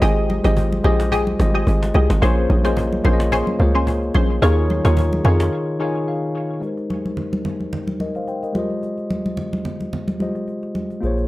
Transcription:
Already playing: tine electric piano G#3 F4 G4 C5 D#5
0.02 log drum bass G#1, synth stab G4 G#4 D#5, cajon bass
0.29 cajon slap, high conga
0.44 log drum bass G#1, tine electric piano G#3 F4 G4 C5 D#5, synth stab G4 G#4 D#5, cajon slap, high conga
0.57 cajon bass, low conga
0.72 high conga
0.84 log drum bass A#1, tine electric piano G#3 F4 G4 C5 D#5, synth stab G4 G#4 D#5, low conga
1.00 cajon slap
1.12 synth stab G4 G#4 D#5, cajon bass
1.27 high conga
1.39 log drum bass G#1, tine electric piano G3 F4 G4 C5 D#5, cajon slap, high conga
1.45 tine electric piano G#3
1.54 synth stab G4 G#4 D#5
1.67 log drum bass G#1, cajon bass
1.83 cajon slap
1.94 log drum bass C2, synth stab G4 G#4 D#5, high conga
2.10 log drum bass G#1, cajon slap
2.21 log drum bass A#1, tine electric piano A#3 F4 G#4 C5 C#5, synth stab C#4 G#4 C5, cajon bass
2.37 cajon slap
2.50 log drum bass A#1, cajon slap, high conga
2.64 tine electric piano A#3 F4 G#4 C5 D#5, synth stab C#4 G#4 C5, cajon slap, high conga
2.77 cajon bass, low conga
2.93 high conga
3.04 log drum bass A#1, tine electric piano A#3 F4 G#4 C5 C#5, synth stab C#4 G#4 C5, low conga
3.13 tine electric piano D#5
3.20 cajon slap
3.32 synth stab C#4 G#4 C5, cajon bass
3.47 high conga
3.59 log drum bass C#2, tine electric piano A#3 F4 G#4 C5 C#5, cajon slap, high conga
3.75 synth stab C#4 G#4 C5, cajon slap
3.87 cajon bass
4.02 cajon slap
4.14 log drum bass A#1, synth stab C#4 G#4 C5, cajon slap, high conga
4.30 cajon slap
4.41 log drum bass D#2, tine electric piano D#3 D#4 F4 G#4 C#5, synth stab F4 G#4 C#5, cajon bass
4.70 cajon slap, high conga
4.84 log drum bass D#2, tine electric piano D#3 D#4 F4 G#4 C#5, synth stab F4 G#4 C#5, cajon slap, high conga
4.97 cajon bass, low conga
5.13 high conga
5.24 log drum bass F2, tine electric piano D#3 D#4 F4 G#4 C#5, synth stab F4 G#4 C#5, low conga
5.40 cajon slap
5.79 tine electric piano D#3 D#4 F4 G#4 C#5 G#5
6.08 tine electric piano F5
6.60 tine electric piano G#3 D#4 G4, cajon slap
6.65 tine electric piano A#4 C5
6.77 cajon slap
6.90 cajon slap, high conga
7.05 cajon slap, high conga
7.17 cajon slap, low conga
7.33 cajon slap, high conga
7.45 cajon slap, low conga
7.60 cajon slap, high conga
7.73 cajon slap, low conga
7.87 cajon slap, high conga
8.00 tine electric piano A#4 D#5, cajon slap, high conga
8.15 tine electric piano C5 F5, cajon slap
8.27 tine electric piano C5 G5, cajon slap
8.43 tine electric piano A#4 D#5, cajon slap
8.53 tine electric piano G#3 F4 G4, cajon slap, high conga
8.57 tine electric piano C5 D#5
8.70 cajon slap
8.83 cajon slap
8.98 cajon slap
9.10 cajon slap, high conga
9.26 cajon slap, high conga
9.37 cajon slap, low conga
9.53 cajon slap, high conga
9.65 cajon slap, low conga
9.80 cajon slap, high conga
9.93 cajon slap, low conga
10.08 cajon slap, high conga
10.19 tine electric piano G#3 F4 G4 C5 D#5, cajon slap, high conga
10.35 cajon slap
10.48 cajon slap
10.63 cajon slap
10.75 cajon slap, high conga
10.90 cajon slap
11.01 sub bass A#1, tine electric piano A#3 F4 G#4, cajon slap
11.05 tine electric piano C5 C#5
11.18 cajon slap

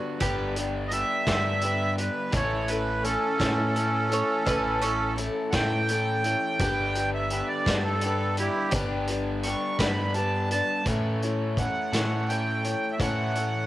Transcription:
Already playing: overdriven electric guitar G2 D3 G3 B3 D4 G4, steel-string acoustic guitar D4 B4, mandolin F#4
0.19 picked electric bass G1, overdriven electric guitar G2 D3 B3, steel-string acoustic guitar G3 D4 G4 B4, mandolin G4, kick, closed hi-hat
0.56 steel-string acoustic guitar D4 G4 B4, closed hi-hat
0.88 steel-string acoustic guitar G3 D4, accordion D#5, closed hi-hat
0.92 steel-string acoustic guitar G4 B4, accordion E5
1.27 picked electric bass G2, overdriven electric guitar G2 D3 B3, steel-string acoustic guitar G3 D4 G4 B4, kick, snare, closed hi-hat
1.62 steel-string acoustic guitar G3 D4 G4 B4, closed hi-hat
1.97 steel-string acoustic guitar D4 G4 B4, accordion B4, closed hi-hat
2.32 picked electric bass A1, steel-string acoustic guitar A2 E3 A3 C#4 E4 A4, tonewheel organ A3 C#4 E4 A4, accordion C#5, kick, closed hi-hat
2.68 steel-string acoustic guitar C#4 E4 A4, accordion B4, closed hi-hat
2.72 steel-string acoustic guitar A3
3.03 steel-string acoustic guitar A3 C#4 E4 A4, accordion C#4 A4, closed hi-hat
3.39 picked electric bass A2, steel-string acoustic guitar A2 E3 A3 C#4 E4 A4, kick, snare, closed hi-hat
3.75 steel-string acoustic guitar A3 C#4 E4 A4, closed hi-hat
4.10 steel-string acoustic guitar A3 C#4 E4 A4, mandolin C#5, closed hi-hat
4.45 picked electric bass A1, steel-string acoustic guitar A2 E3 A3 C#4 E4 A4, mandolin B4, kick, closed hi-hat
4.81 steel-string acoustic guitar A3 C#4 E4 A4, mandolin C#4 A4, closed hi-hat
5.16 steel-string acoustic guitar A3 C#4 E4 A4, closed hi-hat
5.50 picked electric bass A2, steel-string acoustic guitar C#4 E4 A4, accordion F#5, kick, snare, closed hi-hat
5.54 steel-string acoustic guitar A2 E3 A3, accordion G5
5.88 steel-string acoustic guitar A3 C#4 E4 A4, closed hi-hat
6.24 steel-string acoustic guitar A3 C#4 E4 A4, closed hi-hat
6.59 picked electric bass G1, overdriven electric guitar G2 D3 B3, steel-string acoustic guitar G3 D4 G4 B4, tonewheel organ B3 D4 G4 B4, kick, closed hi-hat
6.95 steel-string acoustic guitar D4 G4 B4, closed hi-hat
7.14 accordion E5
7.30 steel-string acoustic guitar G3 D4 G4 B4, closed hi-hat
7.47 accordion D5
7.66 picked electric bass G2, overdriven electric guitar G2 D3 B3, steel-string acoustic guitar G3 D4 G4 B4, kick, snare, closed hi-hat
7.84 accordion A4
8.01 steel-string acoustic guitar G3 D4 G4, closed hi-hat
8.06 steel-string acoustic guitar B4
8.37 accordion E4 G4, steel-string acoustic guitar G4 B4, closed hi-hat
8.42 steel-string acoustic guitar D4
8.71 picked electric bass G1, overdriven electric guitar G2 D3 B3, steel-string acoustic guitar G3 D4 G4, kick, closed hi-hat
8.76 steel-string acoustic guitar B4
9.07 steel-string acoustic guitar G4 B4, closed hi-hat
9.12 steel-string acoustic guitar D4
9.43 steel-string acoustic guitar G3 D4 G4, accordion C#6, closed hi-hat
9.48 steel-string acoustic guitar B4
9.79 picked electric bass G2, overdriven electric guitar G2 D3 B3, steel-string acoustic guitar G3 D4 G4 B4, accordion B5, kick, snare, closed hi-hat
10.14 steel-string acoustic guitar G3 D4 G4, accordion A5, closed hi-hat
10.18 steel-string acoustic guitar B4
10.51 steel-string acoustic guitar D4 G4 B4, accordion A5, closed hi-hat
10.86 picked electric bass A2, steel-string acoustic guitar A2 E3 A3 C#4 E4 C#5, overdriven electric guitar A4, kick, closed hi-hat
11.22 steel-string acoustic guitar A3 C#4 E4 C#5, closed hi-hat
11.57 steel-string acoustic guitar A3 C#4 E4, accordion F#5, kick, closed hi-hat
11.62 steel-string acoustic guitar C#5
11.92 picked electric bass A2, steel-string acoustic guitar A3 C#4 E4 C#5, overdriven electric guitar A4, snare, closed hi-hat
11.96 steel-string acoustic guitar A2 E3
12.29 steel-string acoustic guitar A3 C#4 E4 C#5, accordion G5, closed hi-hat
12.64 steel-string acoustic guitar A3 C#4 E4 C#5, closed hi-hat
12.92 accordion E5
13.00 picked electric bass A2, steel-string acoustic guitar A2 E3 A3 C#4 E4 C#5, overdriven electric guitar A4, accordion F#5, kick, closed hi-hat
13.35 steel-string acoustic guitar A3 C#4 E4 C#5, closed hi-hat

